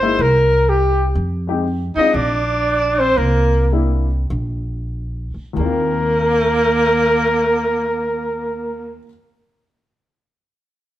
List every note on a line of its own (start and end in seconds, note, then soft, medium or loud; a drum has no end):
0.00 0.15 G1 medium
0.00 0.18 G#3 medium
0.00 0.17 A#3 medium
0.00 0.18 D#4 medium
0.00 0.18 E4 medium
0.00 0.23 C5 medium
0.00 0.23 C5 loud
0.19 1.12 C2 medium
0.19 0.71 A#4 medium
0.69 1.08 G4 medium
0.69 1.09 G4 medium
1.15 1.92 F2 medium
1.47 1.63 G#3 medium
1.47 1.63 C4 medium
1.47 1.63 D#4 medium
1.47 1.63 G4 medium
1.95 2.13 G#3 medium
1.95 2.13 C4 medium
1.95 2.13 D4 medium
1.95 2.15 D#4 medium
1.95 2.13 F4 medium
1.95 2.17 D#5 medium
1.95 muted upright bass stroke soft
2.13 3.13 A#1 medium
2.13 3.01 D4 medium
2.13 3.01 D5 medium
2.99 3.18 C4 medium
2.99 3.19 C5 medium
3.17 4.26 C2 medium
3.17 3.72 A#3 medium
3.17 3.72 A#4 medium
3.72 4.06 G3 medium
3.72 4.06 A#3 medium
3.72 4.06 D4 medium
3.72 4.06 E4 medium
4.30 5.31 A#1 medium
5.34 muted upright bass stroke soft
5.53 8.98 D#2 medium
5.53 8.97 D#2 medium
5.53 9.01 D#3 medium
5.58 9.04 G3 medium
5.58 8.99 A#3 medium
5.58 8.98 A#4 medium
5.62 9.06 C4 medium
5.62 9.09 F4 medium